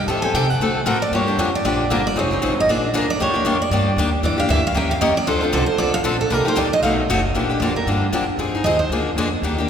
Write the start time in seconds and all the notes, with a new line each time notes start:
0.08 A2 D#3 G3 C4 G4 A4 A5
0.22 C4 G4 A4 G#5
0.34 C3 D#3 G3 C4 G4 A4 G5
0.50 F#5
0.60 D3 A3 C4 F#4 A4
0.85 A2 D3 A3 C4 F#4 A4 A#4
1.02 D5
1.11 G2 D3 F3 A#3 D4 G4 C#5
1.27 A#3 D4 G4
1.37 F2 D3 F3 A#3 D4 G4
1.55 D5
1.64 A#1 D3 F3 A#3 D4 G4 D5
1.90 G1 D3 F3 A#3 D4 G4 A#4
2.07 D5
2.15 F1 F3 C4 D#4 G#4 C#5
2.31 C4 D#4 G#4
2.42 G#1 F3 C4 D#4 G#4
2.60 D#5
2.67 A#1 D3 F3 A#3 D4 G#4 D5
2.94 D2 D3 F3 A#3 D4 G#4 A#4
3.10 D5
3.20 D#2 D#3 G3 A#3 D4 G4 C#5
3.34 A#3 D4 G4, muted upright bass stroke
3.45 F2 D#3 G3 A#3 D4 G4
3.62 D5
3.70 G2 D#3 G3 A#3 D4 G4 D5
3.96 D#2 D#3 G3 A#3 D4 G4
4.23 E2 E3 A#3 D4 G4 D5
4.38 A#3 D4 G4 F5
4.49 D2 E3 A#3 D4 G4 E5
4.67 F5
4.74 D#2 D#3 A#3 C#4 G4 A#4 G5
4.91 F5
5.01 F2 D#3 A#3 C#4 G4 A#4 D#5
5.17 D5
5.26 D2 D3 F3 C4 D4 A4 C5
5.41 C4 D4 F4 A4
5.52 C2 D3 F3 C4 D4 A4
5.66 C5, muted upright bass stroke
5.78 D2 D3 F3 C4 D4 A4 D5
5.94 F5
6.04 A#1 D3 F3 C4 D4 A4
6.21 A4
6.30 C2 C3 G3 A#3 D#4 G4 A#4
6.45 A#3 D#4 G4 C5, muted upright bass stroke
6.56 D2 C3 G3 A#3 D#4 G4 D5
6.73 D#5
6.82 B1 B2 F#3 A3 D#4 F#4 F5
7.09 F#1 B2 F#3 A3 D#4 F#4
7.34 A#1 D3 F3 A#3 D4 G4
7.50 A#3 D4 G4
7.60 F2 D3 F3 A#3 D4 G4 D5
7.76 A#4
7.86 G2 D3 F3 A#3 D4 G4
8.12 F#2 D3 F3 A#3 D4 G4
8.38 F2 F3 C4 D#4 G#4
8.55 C4 D#4 G#4
8.64 D#2 F3 C4 D#4 G#4 D#5
8.79 C5
8.90 D2 D3 F3 A#3 D4 G#4
9.16 F2 D3 F3 A#3 D4 G#4
9.42 D#2 D#3 G3 A#3 D4 G4
9.58 A#3 D4 G4